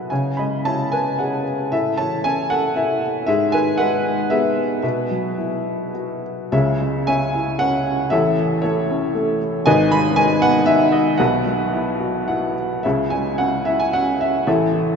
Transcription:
Already playing: B2 F#3 E4 F#4 B4 E5 F#5
0.10 C#3 C#5 G#5
0.37 G#3 D#5 B5
0.65 E4 C#5 A5
0.92 B4 G#5
1.19 G#4 C#5 F#5
1.72 A2 A4 E5
1.98 E3 C#5 A5
2.24 C#4 C#5 G#5
2.50 A4 F#5
2.76 E4 A4 E5
3.26 G#2 G#4 E5
3.52 D#3 B4 G#5
3.78 G#3 B4 F#5
4.30 B3 G#4 E5
4.82 B2 B4 E5
5.11 F#3
5.38 E4
5.94 F#4
6.52 C#2 C#3 G#4 C#5 E5
6.80 G#3
7.07 C#4 C#5 E5 G#5
7.34 E4
7.59 C#4 C#5 F#5
8.10 A1 A2 A4 C#5 E5
8.39 E3
8.62 A3 E4 A4 C#5
8.90 C#4
9.15 A3
9.66 G#1 G#2 B4 D#5 G#5
9.92 D#3 B5
10.16 G#3 G#5
10.42 B3 F#5
10.66 D#4 E5
10.92 D#5
11.18 B1 B2 B4 F#5
11.46 F#3
11.73 E4
12.00 F#4
12.28 E4 F#5
12.83 C#2 C#3 G#4 C#5 E5
13.10 G#3 G#5
13.38 C#4 F#5
13.65 E4 E5
13.80 G#5
13.93 C#4 F#5
14.21 E5
14.47 A1 A2 A4 C#5 E5
14.74 E3

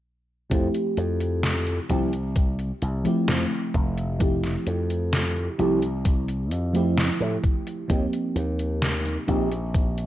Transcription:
0.50 F2 F3 A3 C4 E4 G4, kick, closed hi-hat
0.75 closed hi-hat
0.97 F2, closed hi-hat
1.21 closed hi-hat
1.43 snare, closed hi-hat
1.67 closed hi-hat
1.89 C2 F3 A3 C4 E4 G4, kick, closed hi-hat
2.13 closed hi-hat
2.36 kick, closed hi-hat
2.59 closed hi-hat
2.82 C2, closed hi-hat
3.04 F3 A3 C4 E4 G4, muted slap bass stroke, closed hi-hat
3.28 F2, snare, closed hi-hat
3.74 F1, kick, closed hi-hat
3.98 closed hi-hat
4.19 F3 A3 C4 E4 G4, kick, closed hi-hat
4.44 snare, closed hi-hat
4.66 F2, closed hi-hat
4.90 closed hi-hat
5.13 snare, closed hi-hat
5.36 closed hi-hat
5.58 C2 F3 A3 C4 E4 G4, closed hi-hat
5.82 closed hi-hat
6.05 kick, closed hi-hat
6.28 closed hi-hat
6.51 F2, closed hi-hat
6.73 F3 A3 C4 E4 G4, closed hi-hat
6.98 snare, closed hi-hat
7.21 A2
7.44 kick, closed hi-hat
7.67 closed hi-hat
7.88 D#2 F3 A#3 C4 D#4 G4, kick, closed hi-hat
8.13 closed hi-hat
8.36 D#2, closed hi-hat
8.59 closed hi-hat
8.82 snare, closed hi-hat
9.06 closed hi-hat
9.27 A#1 F3 A#3 C4 D#4 G4, kick, closed hi-hat
9.52 closed hi-hat
9.75 kick, closed hi-hat
9.98 closed hi-hat

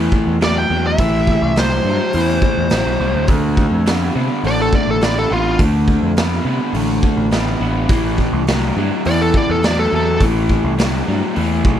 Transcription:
Already playing: A2 E3
0.12 kick
0.27 E2
0.41 A2 F#3 D5, snare, open hi-hat
0.58 G5
0.70 E2 A2 F#3
0.87 E5
0.98 A1 A2 E3, kick, open hi-hat
1.27 kick
1.42 C2
1.56 A2 F#3 C5, snare, open hi-hat
1.85 G2 A2 F#3
2.13 E2 A2 E3, open hi-hat
2.42 kick
2.57 E2
2.70 A1 A2 F#3, snare, open hi-hat
2.86 B1
3.00 C2 A2 F#3
3.14 D2
3.27 D2 D3 A3, kick, open hi-hat
3.57 kick
3.72 F2
3.86 D3 B3, snare, open hi-hat
4.15 C3 D3 B3
4.44 A1 D3 A3 D5, open hi-hat
4.61 A4
4.73 D5, kick
4.87 A1 A4
5.01 D3 B3 D5, snare, open hi-hat
5.19 A4
5.30 A1 D3 B3 F4
5.59 D2 D3 A3, kick, open hi-hat
5.88 kick
6.02 F2
6.17 D3 B3, snare, open hi-hat
6.45 C3 D3 B3
6.73 A1 D3 A3, open hi-hat
7.03 kick
7.17 A1
7.31 D3 B3, snare, open hi-hat
7.60 A1 D3 B3
7.89 A1 A2 E3, kick, open hi-hat
8.18 kick
8.33 C2
8.47 A2 F#3, snare, open hi-hat
8.76 G2 A2 F#3
9.05 E2 A2 E3 D5, open hi-hat
9.22 A4
9.34 D5, kick
9.49 E2 A4
9.63 A2 F#3 D5, snare, open hi-hat
9.79 A4
9.93 E2 A2 F#3 A4
10.21 A1 A2 E3, kick, open hi-hat
10.49 kick
10.64 C2
10.78 A2 F#3, snare, open hi-hat
11.07 G2 A2 F#3
11.36 E2 A2 E3, open hi-hat
11.65 B1, kick

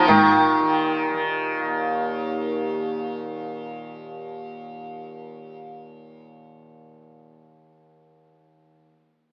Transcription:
Already playing: D#2 A#2 D#3 D#4
0.08 A#2 D#3, tabla na, tabla ge
0.59 D#3
1.10 D#3
1.59 D#2

